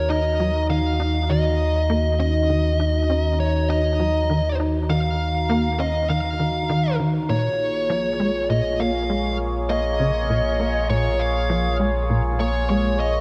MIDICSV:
0, 0, Header, 1, 5, 480
1, 0, Start_track
1, 0, Tempo, 600000
1, 77, Time_signature, 4, 2, 24, 8
1, 10565, End_track
2, 0, Start_track
2, 0, Title_t, "Lead electric guitar"
2, 0, Program_c, 0, 29
2, 78, Note_on_c, 0, 75, 95
2, 526, Note_off_c, 0, 75, 0
2, 561, Note_on_c, 0, 77, 92
2, 1039, Note_on_c, 0, 75, 95
2, 1053, Note_off_c, 0, 77, 0
2, 1750, Note_off_c, 0, 75, 0
2, 1760, Note_on_c, 0, 75, 96
2, 2715, Note_off_c, 0, 75, 0
2, 2719, Note_on_c, 0, 73, 82
2, 2956, Note_off_c, 0, 73, 0
2, 2959, Note_on_c, 0, 75, 84
2, 3646, Note_off_c, 0, 75, 0
2, 3918, Note_on_c, 0, 77, 107
2, 4636, Note_off_c, 0, 77, 0
2, 4639, Note_on_c, 0, 75, 89
2, 4875, Note_off_c, 0, 75, 0
2, 4879, Note_on_c, 0, 77, 92
2, 5566, Note_off_c, 0, 77, 0
2, 5837, Note_on_c, 0, 73, 82
2, 6794, Note_off_c, 0, 73, 0
2, 6798, Note_on_c, 0, 75, 100
2, 7038, Note_on_c, 0, 77, 99
2, 7044, Note_off_c, 0, 75, 0
2, 7486, Note_off_c, 0, 77, 0
2, 7756, Note_on_c, 0, 75, 89
2, 8715, Note_off_c, 0, 75, 0
2, 8718, Note_on_c, 0, 73, 88
2, 8956, Note_on_c, 0, 77, 105
2, 8965, Note_off_c, 0, 73, 0
2, 9405, Note_off_c, 0, 77, 0
2, 9918, Note_on_c, 0, 73, 81
2, 10147, Note_off_c, 0, 73, 0
2, 10156, Note_on_c, 0, 73, 84
2, 10394, Note_off_c, 0, 73, 0
2, 10397, Note_on_c, 0, 75, 93
2, 10565, Note_off_c, 0, 75, 0
2, 10565, End_track
3, 0, Start_track
3, 0, Title_t, "Analog synth pad"
3, 0, Program_c, 1, 89
3, 0, Note_on_c, 1, 51, 78
3, 0, Note_on_c, 1, 63, 72
3, 0, Note_on_c, 1, 66, 72
3, 0, Note_on_c, 1, 82, 88
3, 5805, Note_off_c, 1, 51, 0
3, 5805, Note_off_c, 1, 63, 0
3, 5805, Note_off_c, 1, 66, 0
3, 5805, Note_off_c, 1, 82, 0
3, 5836, Note_on_c, 1, 58, 82
3, 5836, Note_on_c, 1, 65, 69
3, 5836, Note_on_c, 1, 68, 72
3, 5837, Note_on_c, 1, 73, 88
3, 10565, Note_off_c, 1, 58, 0
3, 10565, Note_off_c, 1, 65, 0
3, 10565, Note_off_c, 1, 68, 0
3, 10565, Note_off_c, 1, 73, 0
3, 10565, End_track
4, 0, Start_track
4, 0, Title_t, "Analog synth bass"
4, 0, Program_c, 2, 38
4, 78, Note_on_c, 2, 63, 76
4, 171, Note_off_c, 2, 63, 0
4, 318, Note_on_c, 2, 54, 73
4, 410, Note_off_c, 2, 54, 0
4, 558, Note_on_c, 2, 51, 69
4, 650, Note_off_c, 2, 51, 0
4, 797, Note_on_c, 2, 63, 72
4, 952, Note_off_c, 2, 63, 0
4, 1036, Note_on_c, 2, 51, 80
4, 1191, Note_off_c, 2, 51, 0
4, 1517, Note_on_c, 2, 58, 97
4, 1672, Note_off_c, 2, 58, 0
4, 1756, Note_on_c, 2, 61, 75
4, 1850, Note_off_c, 2, 61, 0
4, 1997, Note_on_c, 2, 51, 79
4, 2090, Note_off_c, 2, 51, 0
4, 2237, Note_on_c, 2, 63, 77
4, 2330, Note_off_c, 2, 63, 0
4, 2476, Note_on_c, 2, 61, 72
4, 2705, Note_off_c, 2, 61, 0
4, 2956, Note_on_c, 2, 63, 80
4, 3050, Note_off_c, 2, 63, 0
4, 3196, Note_on_c, 2, 54, 71
4, 3290, Note_off_c, 2, 54, 0
4, 3436, Note_on_c, 2, 51, 77
4, 3530, Note_off_c, 2, 51, 0
4, 3677, Note_on_c, 2, 63, 74
4, 3832, Note_off_c, 2, 63, 0
4, 3916, Note_on_c, 2, 51, 79
4, 4072, Note_off_c, 2, 51, 0
4, 4396, Note_on_c, 2, 58, 98
4, 4552, Note_off_c, 2, 58, 0
4, 4637, Note_on_c, 2, 61, 75
4, 4730, Note_off_c, 2, 61, 0
4, 4877, Note_on_c, 2, 51, 82
4, 4970, Note_off_c, 2, 51, 0
4, 5117, Note_on_c, 2, 51, 72
4, 5210, Note_off_c, 2, 51, 0
4, 5356, Note_on_c, 2, 51, 100
4, 5585, Note_off_c, 2, 51, 0
4, 5596, Note_on_c, 2, 51, 73
4, 5752, Note_off_c, 2, 51, 0
4, 5835, Note_on_c, 2, 46, 81
4, 5991, Note_off_c, 2, 46, 0
4, 6316, Note_on_c, 2, 53, 98
4, 6472, Note_off_c, 2, 53, 0
4, 6557, Note_on_c, 2, 56, 74
4, 6650, Note_off_c, 2, 56, 0
4, 6798, Note_on_c, 2, 46, 80
4, 6890, Note_off_c, 2, 46, 0
4, 7037, Note_on_c, 2, 58, 75
4, 7130, Note_off_c, 2, 58, 0
4, 7276, Note_on_c, 2, 56, 75
4, 7505, Note_off_c, 2, 56, 0
4, 7757, Note_on_c, 2, 58, 82
4, 7850, Note_off_c, 2, 58, 0
4, 7997, Note_on_c, 2, 49, 73
4, 8090, Note_off_c, 2, 49, 0
4, 8237, Note_on_c, 2, 46, 72
4, 8330, Note_off_c, 2, 46, 0
4, 8477, Note_on_c, 2, 58, 74
4, 8632, Note_off_c, 2, 58, 0
4, 8717, Note_on_c, 2, 46, 83
4, 8872, Note_off_c, 2, 46, 0
4, 9196, Note_on_c, 2, 53, 100
4, 9352, Note_off_c, 2, 53, 0
4, 9437, Note_on_c, 2, 56, 78
4, 9530, Note_off_c, 2, 56, 0
4, 9678, Note_on_c, 2, 46, 80
4, 9770, Note_off_c, 2, 46, 0
4, 9917, Note_on_c, 2, 58, 76
4, 10010, Note_off_c, 2, 58, 0
4, 10158, Note_on_c, 2, 56, 72
4, 10385, Note_off_c, 2, 56, 0
4, 10565, End_track
5, 0, Start_track
5, 0, Title_t, "Sub bass"
5, 0, Program_c, 3, 38
5, 0, Note_on_c, 3, 39, 85
5, 5813, Note_off_c, 3, 39, 0
5, 5837, Note_on_c, 3, 34, 88
5, 10565, Note_off_c, 3, 34, 0
5, 10565, End_track
0, 0, End_of_file